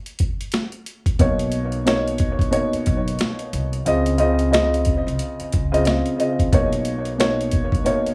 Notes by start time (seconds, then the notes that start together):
0.06 closed hi-hat
0.19 kick, closed hi-hat
0.41 closed hi-hat
0.52 snare, closed hi-hat
0.72 closed hi-hat
0.86 closed hi-hat
1.06 kick, closed hi-hat
1.19 B1 B2 A#3 D#4 C#5, kick, closed hi-hat
1.39 closed hi-hat
1.52 closed hi-hat
1.72 closed hi-hat
1.85 B2 A#3 D#4 C#5, snare, closed hi-hat
2.08 closed hi-hat
2.18 kick, closed hi-hat
2.39 A#1, kick, closed hi-hat
2.51 B2 A#3 D#4 C#5, closed hi-hat
2.73 muted upright bass stroke, closed hi-hat
2.86 B1, kick, closed hi-hat
3.08 closed hi-hat
3.19 snare, closed hi-hat
3.39 closed hi-hat
3.53 C2, closed hi-hat
3.73 closed hi-hat
3.85 C#2 C#3 C4 F4 D#5, closed hi-hat
4.06 closed hi-hat
4.18 C#3 C4 F4 D#5, closed hi-hat
4.39 closed hi-hat
4.51 C#3 C4 F4 D#5, snare, closed hi-hat
4.74 closed hi-hat
4.85 kick, closed hi-hat
5.07 C2, closed hi-hat
5.19 closed hi-hat
5.40 muted upright bass stroke, closed hi-hat
5.52 C#2, kick, closed hi-hat
5.72 C#3 C4 F4 D#5, closed hi-hat
5.84 C#3 C4 F4 D#5, snare, closed hi-hat
6.06 closed hi-hat
6.18 C#3 C4 F4 D#5, closed hi-hat
6.39 kick, closed hi-hat
6.52 B1 B2 A#3 D#4 C#5, kick, closed hi-hat
6.73 closed hi-hat
6.85 closed hi-hat
7.05 closed hi-hat
7.18 B2 A#3 D#4 C#5, snare, closed hi-hat
7.41 closed hi-hat
7.51 kick, closed hi-hat
7.72 A#1, kick, closed hi-hat
7.84 B2 A#3 D#4 C#5, closed hi-hat
8.06 muted upright bass stroke, closed hi-hat